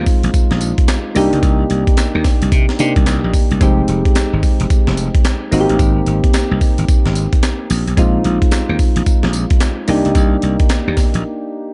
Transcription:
Already playing: synth keys G#3 C4 D#4 F4
0.06 kick, open hi-hat, tambourine
0.23 slap bass A#1, closed hi-hat
0.34 kick, closed hi-hat, tambourine
0.51 slap bass A#1, snare
0.61 closed hi-hat, tambourine
0.78 kick, closed hi-hat
0.88 snare, clap, closed hi-hat, tambourine
1.15 slap bass C2, synth keys A#3 D4 D#4 G4, open hi-hat, tambourine
1.33 slap bass C#2, closed hi-hat
1.43 slap bass C2, kick, closed hi-hat, tambourine
1.70 slap bass C2, closed hi-hat
1.87 kick, closed hi-hat
1.97 snare, clap, closed hi-hat, tambourine
2.15 slap bass D#2
2.24 kick, snare, open hi-hat, tambourine
2.42 slap bass C2, closed hi-hat
2.52 slap bass C3, kick, closed hi-hat, tambourine
2.69 snare
2.79 slap bass C3, synth keys A#3 D4 D#4 G4, closed hi-hat, tambourine
2.96 slap bass C2, kick, closed hi-hat
3.06 slap bass C2, snare, clap, closed hi-hat, tambourine
3.24 slap bass A#1
3.33 kick, open hi-hat, tambourine
3.51 slap bass C2, closed hi-hat
3.61 slap bass F1, synth keys G#3 C4 D#4 G4, kick, closed hi-hat, tambourine
3.88 slap bass F1, closed hi-hat
4.05 kick, closed hi-hat
4.15 snare, clap, closed hi-hat, tambourine
4.33 slap bass G#1
4.43 kick, open hi-hat, tambourine
4.60 slap bass F1, closed hi-hat
4.70 kick, closed hi-hat, tambourine
4.87 slap bass F1, snare
4.97 closed hi-hat, tambourine
5.15 kick, closed hi-hat
5.25 snare, clap, closed hi-hat, tambourine
5.51 slap bass G#1, synth keys A#3 C4 D#4 F#4, open hi-hat, tambourine
5.60 synth keys G4
5.69 slap bass A1, closed hi-hat
5.79 slap bass G#1, kick, closed hi-hat, tambourine
6.06 slap bass G#1, closed hi-hat
6.24 kick, closed hi-hat
6.34 snare, clap, closed hi-hat, tambourine
6.51 slap bass C2
6.61 kick, open hi-hat, tambourine
6.78 slap bass G#1, closed hi-hat
6.88 kick, closed hi-hat, tambourine
7.06 slap bass G#1, snare
7.15 closed hi-hat, tambourine
7.33 kick, closed hi-hat
7.43 snare, clap, closed hi-hat, tambourine
7.70 slap bass A#1, open hi-hat, tambourine
7.87 slap bass B1, closed hi-hat
7.97 slap bass A#1, synth keys G#3 C4 D#4 F4, kick, closed hi-hat, tambourine
8.24 slap bass A#1, closed hi-hat
8.42 kick, closed hi-hat
8.51 snare, clap, closed hi-hat, tambourine
8.69 slap bass D#2
8.79 kick, open hi-hat, tambourine
8.96 slap bass A#1, closed hi-hat
9.06 muted slap bass stroke, kick, closed hi-hat, tambourine
9.23 slap bass A#1, snare
9.33 closed hi-hat, tambourine
9.50 kick, closed hi-hat
9.60 snare, clap, closed hi-hat, tambourine
9.88 slap bass C2, synth keys A#3 D4 D#4 G4, open hi-hat, tambourine
10.05 slap bass C#2, closed hi-hat
10.15 slap bass C2, kick, closed hi-hat, tambourine
10.42 slap bass C2, closed hi-hat
10.60 kick, closed hi-hat
10.69 snare, clap, closed hi-hat, tambourine
10.88 slap bass D#2
10.97 kick, snare, open hi-hat, tambourine
11.14 slap bass A#1, closed hi-hat

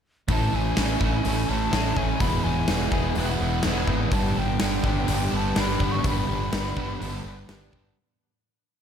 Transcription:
0.28 fretless electric bass A1, overdriven electric guitar A2 E3 A3 C#4 E4, flute A5, kick, open hi-hat
0.52 fretless electric bass A1, clean electric guitar E3, overdriven electric guitar A3 C#4 E4, flute G#5
0.77 fretless electric bass A1, overdriven electric guitar E3 A3 C#4 E4, snare, open hi-hat
1.01 fretless electric bass A1, overdriven electric guitar A3 C#4 E4, flute G#5, kick
1.24 fretless electric bass A1, overdriven electric guitar A2 E3 A3 C#4 E4, open hi-hat
1.48 fretless electric bass A1, overdriven electric guitar A3 C#4 E4, flute A5
1.72 fretless electric bass A1, overdriven electric guitar E3 A3 C#4 E4, clean electric guitar G#4, snare, open hi-hat
1.96 fretless electric bass A1, overdriven electric guitar A3 C#4 E4, flute G#5, kick
2.20 fretless electric bass E1, overdriven electric guitar E2 B2 E3 G#3 B3 E4, clean electric guitar F#3, flute B5, kick, open hi-hat
2.43 fretless electric bass E1, overdriven electric guitar E3 G#3 B3 E4, clean electric guitar F#3, flute G#5
2.67 fretless electric bass E1, overdriven electric guitar E3 G#3 B3 E4, snare, open hi-hat
2.91 fretless electric bass E1, overdriven electric guitar G#3 B3 E4, clean electric guitar G#4, flute G#5, kick
2.95 overdriven electric guitar E3
3.15 fretless electric bass E1, overdriven electric guitar E2 B2 E3 G#3 B3 E4, flute F#5, open hi-hat
3.40 fretless electric bass E1, overdriven electric guitar E3 G#3 B3 E4
3.63 fretless electric bass E1, overdriven electric guitar E3 G#3 B3, clean electric guitar G#4, snare, open hi-hat
3.67 overdriven electric guitar E4
3.87 fretless electric bass G#1, overdriven electric guitar E3 G#3 B3 E4, clean electric guitar D#4, kick
4.11 fretless electric bass G1, overdriven electric guitar G2 D3 G3 B3 D4 G4, flute A5, kick, open hi-hat
4.35 fretless electric bass G1, overdriven electric guitar G3 B3 D4 G4, flute G5
4.59 fretless electric bass G1, overdriven electric guitar D3 G3 B3 D4 G4, snare, open hi-hat
4.84 fretless electric bass G1, overdriven electric guitar G3 B3 D4 G4, flute G5, kick
5.07 fretless electric bass G1, overdriven electric guitar G2 D3 G3 B3 D4 G4, open hi-hat
5.31 fretless electric bass G1, overdriven electric guitar G3 B3 D4 G4
5.36 flute A5
5.55 fretless electric bass G1, overdriven electric guitar D3 G3 B3 D4 G4, snare, open hi-hat
5.60 flute B5
5.80 fretless electric bass G1, overdriven electric guitar G3 B3 D4 G4, kick
5.92 flute C#6
6.04 fretless electric bass G1, overdriven electric guitar G2 D3 G3 B3 D4 G4, kick, open hi-hat
6.08 flute B5
6.28 fretless electric bass G1, overdriven electric guitar G3 B3 D4 G4
6.52 fretless electric bass G1, overdriven electric guitar D3 G3 B3 D4 G4, snare, open hi-hat
6.76 fretless electric bass G1, overdriven electric guitar G3 B3 D4 G4, kick
7.00 fretless electric bass G1, overdriven electric guitar G2 D3 G3 B3 D4 G4, open hi-hat
7.24 fretless electric bass G1, overdriven electric guitar G3 B3 D4 G4
7.47 fretless electric bass G1, overdriven electric guitar D3 G3 B3 D4 G4, snare, open hi-hat
7.72 fretless electric bass G1, overdriven electric guitar G3 B3 D4 G4, kick

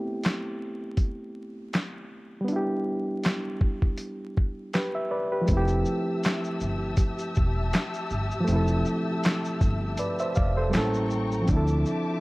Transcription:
Already playing: reed electric piano A3 B3 C4 E4 G4
0.23 snare, clap, closed hi-hat
0.97 kick, closed hi-hat
1.73 snare, clap, closed hi-hat
2.41 reed electric piano G3 B3
2.48 reed electric piano D4, closed hi-hat
2.53 reed electric piano E4 G4
3.24 snare, clap, closed hi-hat
3.61 kick
3.82 kick
3.97 closed hi-hat
4.37 kick
4.73 reed electric piano G4 B4, snare, clap, closed hi-hat
4.95 reed electric piano E5
5.11 reed electric piano B4 D5
5.32 reed electric piano G4 B4
5.41 reed electric piano F3 G#3
5.48 upright bass F1, reed electric piano A3 C4, string section G4 E5 A5 E6, kick, closed hi-hat, shaker
5.53 reed electric piano E4 G4
5.68 shaker
5.85 shaker
6.24 snare, clap, closed hi-hat, shaker
6.44 shaker
6.61 upright bass G1, shaker
6.97 kick, closed hi-hat, shaker
7.19 shaker
7.35 upright bass E1, kick, shaker
7.73 snare, clap, closed hi-hat, shaker
7.94 shaker
8.10 upright bass G1, shaker
8.31 shaker
8.41 reed electric piano F3 A3
8.48 upright bass F1, reed electric piano C4, closed hi-hat, shaker
8.53 reed electric piano E4 A4
8.68 shaker
8.85 shaker
9.24 snare, clap, closed hi-hat, shaker
9.45 shaker
9.61 upright bass G1, kick, shaker
9.97 reed electric piano B4 D5, closed hi-hat, shaker
10.19 reed electric piano C5 E5, shaker
10.35 upright bass F1, reed electric piano D5 F5, kick, shaker
10.57 reed electric piano A4 C5
10.70 reed electric piano G3 A#3 C#4, closed hi-hat, shaker
10.74 upright bass A1, reed electric piano E4 A4, string section A4 G5 A#5 C#6, snare, clap
10.94 shaker
11.10 shaker
11.32 shaker
11.41 reed electric piano F3 C4
11.48 upright bass D2, string section F3 E5 A5 D6, reed electric piano D4, kick, closed hi-hat, shaker
11.53 reed electric piano E4 A4
11.68 shaker
11.86 shaker

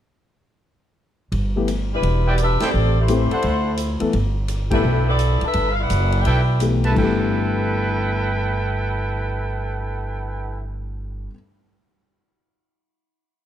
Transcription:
1.32 upright bass G1, ride
1.56 grand piano E3 A3 B3 G4
1.68 hi-hat pedal, ride
1.93 saxophone section G3 D4 E4 B4
2.03 upright bass E1, ride
2.27 saxophone section B3 E4 G4 D5, trumpet section E4 B4 D5 G5
2.38 saxophone section G4 B4 E5, hi-hat pedal, ride
2.42 saxophone section D4
2.60 saxophone section C4 A4 D5, trumpet section E4 A4 C5 G5, muted upright bass stroke, snare, ride
2.65 saxophone section G4
2.74 upright bass A1
3.00 saxophone section A3 E4 G4 C5
3.08 grand piano E3 A3 C4 G4, hi-hat pedal, ride
3.30 trumpet section D4 A4 C5 F#5, muted upright bass stroke, ride
3.42 upright bass D2, ride
3.77 hi-hat pedal, ride
4.00 grand piano E3 A3 B3 A4, muted upright bass stroke, ride
4.13 upright bass G1, ride
4.48 hi-hat pedal, ride
4.70 grand piano E3 A3 B3 G4, saxophone section A3 D4 E4 B4, trumpet section E4 A4 B4 G5, kick, ride
4.84 upright bass B1
5.08 saxophone section B3 E4 A4 D5
5.19 hi-hat pedal, ride
5.41 saxophone section D4 A4 B4 E5, muted upright bass stroke, ride
5.53 upright bass G1, ride
5.71 saxophone section F5
5.80 saxophone section E4 B4 D5 F#5
5.90 upright bass F#1, hi-hat pedal, ride
6.12 ride
6.17 saxophone section E4 B4 D5 G5
6.25 upright bass B1, trumpet section E4 A4 B4 G5, ride
6.60 grand piano E3 A3 B3 G4, hi-hat pedal, ride
6.83 trumpet section E4 A4 B4 A5, ride
6.91 grand piano G2 E3
6.96 upright bass G1, grand piano A3, trumpet section E4 A4 B4 G5, kick, crash
7.00 grand piano B3 G4

